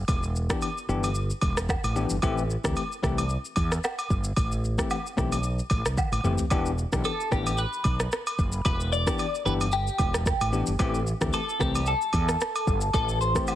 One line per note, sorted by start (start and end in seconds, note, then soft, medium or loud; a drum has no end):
0.08 0.50 E1 loud
0.08 kick loud
0.08 high agogo medium
0.08 shaker medium
0.23 shaker medium
0.36 shaker medium
0.50 0.67 E3 medium
0.50 0.68 B3 medium
0.50 0.68 D4 medium
0.50 0.68 G4 medium
0.50 kick medium
0.50 cross-stick loud
0.50 shaker loud
0.62 high agogo medium
0.62 shaker medium
0.78 shaker medium
0.89 1.31 G1 medium
0.89 1.08 E3 medium
0.89 1.08 B3 medium
0.89 1.08 D4 medium
0.89 1.08 G4 medium
0.89 shaker medium
1.04 high agogo medium
1.04 shaker medium
1.15 shaker medium
1.30 shaker medium
1.41 1.75 E1 loud
1.41 kick medium
1.41 high agogo medium
1.41 shaker medium
1.57 cross-stick loud
1.57 shaker loud
1.69 kick medium
1.69 cross-stick medium
1.69 low woodblock medium
1.69 shaker medium
1.84 2.05 A1 medium
1.84 high agogo medium
1.84 shaker medium
1.96 2.15 E3 medium
1.96 2.15 B3 medium
1.96 2.15 D4 medium
1.96 2.15 G4 medium
1.96 shaker soft
2.10 2.20 G1 medium
2.10 shaker loud
2.22 2.55 A1 loud
2.22 2.42 E3 loud
2.22 2.42 A3 medium
2.22 2.42 C4 medium
2.22 2.42 G4 loud
2.22 kick loud
2.22 high agogo medium
2.22 shaker medium
2.38 shaker medium
2.50 shaker medium
2.64 2.74 D2 medium
2.64 2.82 E3 medium
2.64 2.82 A3 medium
2.64 2.82 C4 medium
2.64 2.82 G4 medium
2.64 kick medium
2.64 cross-stick loud
2.64 shaker loud
2.76 high agogo medium
2.76 shaker medium
2.92 shaker soft
3.03 3.36 C2 medium
3.03 3.22 E3 medium
3.03 3.22 A3 medium
3.03 3.22 C4 medium
3.03 3.22 G4 medium
3.03 kick medium
3.03 cross-stick medium
3.03 shaker medium
3.18 high agogo medium
3.18 shaker medium
3.29 shaker medium
3.45 shaker medium
3.56 3.78 E2 medium
3.56 kick medium
3.56 high agogo medium
3.56 shaker medium
3.72 cross-stick loud
3.72 shaker loud
3.84 cross-stick loud
3.84 low woodblock medium
3.84 shaker medium
3.99 high agogo medium
3.99 shaker medium
4.10 4.31 G1 medium
4.10 kick medium
4.10 shaker soft
4.24 shaker loud
4.37 4.79 A1 loud
4.37 kick loud
4.37 high agogo medium
4.37 shaker medium
4.52 shaker medium
4.64 shaker soft
4.78 4.96 E3 medium
4.78 4.96 A3 medium
4.78 4.96 C4 medium
4.78 4.96 G4 medium
4.78 kick medium
4.78 cross-stick loud
4.78 shaker loud
4.90 high agogo medium
4.90 low woodblock medium
4.90 shaker medium
5.06 shaker soft
5.17 5.59 B1 medium
5.17 5.36 E3 medium
5.17 5.36 A3 medium
5.17 5.37 C4 medium
5.17 5.37 G4 medium
5.17 kick medium
5.17 cross-stick medium
5.17 shaker medium
5.32 high agogo medium
5.32 shaker medium
5.43 shaker medium
5.59 shaker medium
5.70 5.82 A1 loud
5.70 kick medium
5.70 high agogo medium
5.70 shaker soft
5.85 5.95 C2 medium
5.85 cross-stick loud
5.85 shaker loud
5.97 kick medium
5.97 high tom medium
5.97 low woodblock medium
5.97 shaker medium
6.12 6.21 A1 medium
6.12 high agogo medium
6.12 shaker medium
6.24 6.36 F#1 medium
6.24 6.43 E3 medium
6.24 6.44 A3 medium
6.24 6.44 C4 medium
6.24 6.44 G4 medium
6.24 mid tom medium
6.24 shaker soft
6.38 floor tom medium
6.38 shaker loud
6.50 6.84 E1 loud
6.50 6.70 E3 medium
6.50 6.70 B3 medium
6.50 6.71 D4 medium
6.50 6.71 G4 loud
6.50 kick loud
6.50 high agogo medium
6.50 shaker medium
6.66 shaker medium
6.78 shaker medium
6.92 7.02 B1 medium
6.92 7.10 E3 medium
6.92 7.10 B3 medium
6.92 7.10 D4 medium
6.92 7.11 G4 medium
6.92 kick medium
6.92 cross-stick loud
6.92 shaker loud
7.04 7.31 A4 medium
7.04 high agogo medium
7.04 shaker medium
7.21 shaker medium
7.31 7.64 A1 medium
7.31 7.51 E3 medium
7.31 7.51 B3 medium
7.31 7.51 D4 medium
7.31 7.51 G4 medium
7.31 7.59 G4 medium
7.31 kick medium
7.31 cross-stick medium
7.31 shaker medium
7.47 high agogo medium
7.47 shaker medium
7.58 8.64 B4 medium
7.58 shaker medium
7.73 shaker medium
7.84 8.06 B1 medium
7.84 kick medium
7.84 high agogo medium
7.84 shaker soft
8.00 cross-stick loud
8.00 shaker loud
8.12 cross-stick loud
8.12 shaker medium
8.27 high agogo medium
8.27 shaker medium
8.39 8.60 F#1 medium
8.39 kick medium
8.39 shaker soft
8.52 shaker loud
8.65 9.07 E1 loud
8.65 8.90 B4 loud
8.65 kick loud
8.65 high agogo medium
8.65 shaker medium
8.80 shaker medium
8.92 9.45 D5 loud
8.92 shaker medium
9.07 9.24 E3 medium
9.07 9.24 B3 medium
9.07 9.25 D4 medium
9.07 9.25 G4 medium
9.07 kick medium
9.07 cross-stick loud
9.07 shaker loud
9.19 high agogo medium
9.19 shaker medium
9.35 shaker soft
9.46 9.88 G1 medium
9.46 9.65 E3 medium
9.46 9.65 B3 medium
9.46 9.65 D4 medium
9.46 9.65 G4 medium
9.46 9.53 B4 loud
9.46 shaker soft
9.61 high agogo medium
9.61 shaker medium
9.72 10.49 G4 medium
9.72 shaker medium
9.87 shaker medium
9.98 10.32 E1 loud
9.98 kick medium
9.98 high agogo medium
9.98 shaker medium
10.14 cross-stick loud
10.14 shaker loud
10.26 kick medium
10.26 cross-stick loud
10.26 shaker medium
10.41 10.62 A1 medium
10.41 high agogo medium
10.41 shaker medium
10.52 10.72 E3 medium
10.52 10.72 B3 medium
10.52 10.72 D4 medium
10.52 10.72 G4 medium
10.52 shaker soft
10.67 10.77 G1 medium
10.67 shaker loud
10.79 11.12 A1 loud
10.79 10.99 E3 loud
10.79 10.99 A3 medium
10.79 10.99 C4 medium
10.79 10.99 G4 loud
10.79 kick loud
10.79 high agogo medium
10.79 shaker medium
10.94 shaker medium
11.07 shaker medium
11.21 11.31 D2 medium
11.21 11.39 E3 medium
11.21 11.39 A3 medium
11.21 11.39 C4 medium
11.21 11.39 G4 medium
11.21 kick medium
11.21 cross-stick loud
11.21 shaker loud
11.33 11.59 A4 medium
11.33 high agogo medium
11.33 shaker medium
11.49 shaker medium
11.60 11.93 C2 medium
11.60 11.79 E3 medium
11.60 11.79 A3 medium
11.60 11.79 C4 medium
11.60 11.79 G4 medium
11.60 11.88 G4 medium
11.60 kick medium
11.60 cross-stick loud
11.60 shaker medium
11.75 high agogo medium
11.75 shaker medium
11.86 12.93 A4 medium
11.86 shaker medium
12.02 shaker medium
12.13 12.35 E2 medium
12.13 kick medium
12.13 high agogo medium
12.13 shaker medium
12.29 cross-stick loud
12.29 shaker loud
12.41 cross-stick loud
12.41 shaker medium
12.56 high agogo medium
12.56 shaker medium
12.67 12.88 G1 medium
12.67 kick medium
12.67 shaker soft
12.81 shaker loud
12.93 13.36 A1 loud
12.93 13.19 A4 loud
12.93 kick loud
12.93 high agogo medium
12.93 shaker medium
13.09 shaker medium
13.21 13.55 C5 loud
13.21 shaker medium
13.35 13.53 E3 medium
13.35 13.53 A3 medium
13.35 13.53 C4 medium
13.35 13.53 G4 medium
13.35 kick medium
13.35 cross-stick loud
13.35 shaker loud
13.47 high agogo medium
13.47 low woodblock medium
13.47 shaker medium